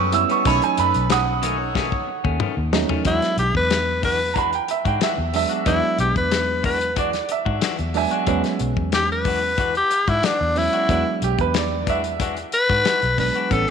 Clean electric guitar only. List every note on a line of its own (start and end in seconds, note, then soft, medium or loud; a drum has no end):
0.13 muted clean electric guitar stroke soft
0.29 0.45 G3 soft
0.29 0.46 B3 soft
0.29 0.45 C#4 medium
0.45 0.62 B2 medium
0.45 0.62 D#3 medium
0.45 0.61 A3 medium
0.45 0.61 C#4 medium
0.62 muted clean electric guitar stroke soft
0.78 muted clean electric guitar stroke soft
1.10 muted clean electric guitar stroke soft
1.42 1.60 B2 medium
1.42 1.59 D#3 medium
1.42 1.59 A3 medium
1.42 1.58 C#4 medium
1.59 muted clean electric guitar stroke soft
1.75 1.92 B2 medium
1.75 1.92 D#3 medium
1.75 1.92 A3 medium
1.75 1.91 C#4 medium
1.92 muted clean electric guitar stroke medium
2.07 muted clean electric guitar stroke soft
2.24 2.40 D#3 medium
2.24 2.40 A3 medium
2.24 2.40 C#4 medium
2.40 2.57 B2 medium
2.40 2.57 D#3 medium
2.40 2.57 A3 medium
2.40 2.56 C#4 medium
2.57 muted clean electric guitar stroke medium
2.73 muted clean electric guitar stroke medium
2.89 3.04 D#3 medium
2.89 3.05 A3 medium
2.89 3.05 C#4 medium
3.05 3.22 E3 medium
3.05 3.22 G#3 medium
3.05 3.22 D4 medium
3.05 3.21 F#4 medium
3.22 muted clean electric guitar stroke soft
3.38 muted clean electric guitar stroke soft
3.70 muted clean electric guitar stroke soft
4.03 4.20 E3 medium
4.03 4.20 G#3 medium
4.03 4.20 D4 medium
4.03 4.19 F#4 medium
4.20 muted clean electric guitar stroke soft
4.35 4.52 E3 medium
4.35 4.53 G#3 medium
4.35 4.52 D4 medium
4.35 4.51 F#4 medium
4.53 muted clean electric guitar stroke soft
4.68 muted clean electric guitar stroke soft
4.85 5.01 G#3 soft
4.85 5.01 D4 soft
4.85 5.01 F#4 medium
5.01 5.18 E3 medium
5.01 5.18 G#3 medium
5.01 5.17 D4 medium
5.01 5.16 F#4 medium
5.18 muted clean electric guitar stroke soft
5.33 muted clean electric guitar stroke soft
5.49 5.65 G#3 soft
5.49 5.66 D4 soft
5.49 5.66 F#4 soft
5.65 5.83 E3 medium
5.65 5.82 G#3 medium
5.65 5.82 D4 medium
5.65 5.81 F#4 medium
5.82 muted clean electric guitar stroke soft
5.98 muted clean electric guitar stroke soft
6.31 muted clean electric guitar stroke soft
6.63 6.81 E3 medium
6.63 6.81 G#3 medium
6.63 6.80 D4 medium
6.63 6.79 F#4 medium
6.81 muted clean electric guitar stroke soft
6.96 7.13 E3 medium
6.96 7.13 G#3 medium
6.96 7.12 D4 medium
6.96 7.12 F#4 medium
7.13 muted clean electric guitar stroke soft
7.29 muted clean electric guitar stroke soft
7.45 7.61 G#3 soft
7.45 7.62 D4 soft
7.45 7.62 F#4 medium
7.61 7.79 E3 medium
7.61 7.79 G#3 medium
7.61 7.78 D4 medium
7.61 7.78 F#4 medium
7.79 muted clean electric guitar stroke soft
7.94 muted clean electric guitar stroke soft
8.11 8.27 G#3 soft
8.11 8.27 D4 medium
8.11 8.27 F#4 medium
8.27 8.44 E3 medium
8.27 8.44 G#3 medium
8.27 8.44 D4 medium
8.27 8.43 F#4 medium
8.44 muted clean electric guitar stroke soft
8.60 muted clean electric guitar stroke soft
8.93 muted clean electric guitar stroke soft
9.25 9.42 E3 medium
9.25 9.42 G#3 medium
9.25 9.42 D4 medium
9.25 9.41 F#4 medium
9.42 muted clean electric guitar stroke soft
9.58 9.75 E3 medium
9.58 9.75 G#3 medium
9.58 9.75 D4 medium
9.58 9.74 F#4 medium
9.75 muted clean electric guitar stroke soft
9.91 muted clean electric guitar stroke soft
10.08 10.23 G#3 soft
10.08 10.24 D4 soft
10.08 10.23 F#4 medium
10.23 10.40 E3 medium
10.23 10.41 G#3 soft
10.23 10.40 D4 medium
10.23 10.39 F#4 medium
10.41 muted clean electric guitar stroke soft
10.57 muted clean electric guitar stroke soft
10.73 10.89 G#3 soft
10.73 10.89 D4 soft
10.73 10.89 F#4 medium
10.89 11.06 E3 medium
10.89 11.06 G#3 medium
10.89 11.06 D4 medium
10.89 11.05 F#4 medium
11.06 muted clean electric guitar stroke soft
11.22 muted clean electric guitar stroke soft
11.54 muted clean electric guitar stroke soft
11.87 12.04 E3 medium
11.87 12.04 G#3 medium
11.87 12.04 D4 medium
11.87 12.03 F#4 medium
12.04 muted clean electric guitar stroke soft
12.20 12.37 E3 medium
12.20 12.37 G#3 medium
12.20 12.37 D4 medium
12.20 12.36 F#4 medium
12.37 muted clean electric guitar stroke soft
12.53 muted clean electric guitar stroke soft
12.69 12.85 G#3 soft
12.69 12.86 D4 soft
12.69 12.85 F#4 soft
12.85 13.02 E3 medium
12.85 13.03 G#3 medium
12.85 13.02 D4 medium
12.85 13.01 F#4 medium
13.03 muted clean electric guitar stroke soft
13.18 muted clean electric guitar stroke soft
13.35 13.52 G#3 soft
13.35 13.52 D4 soft
13.35 13.51 F#4 soft
13.51 13.68 A2 medium
13.51 13.68 G3 medium
13.51 13.68 B3 medium
13.51 13.67 C#4 medium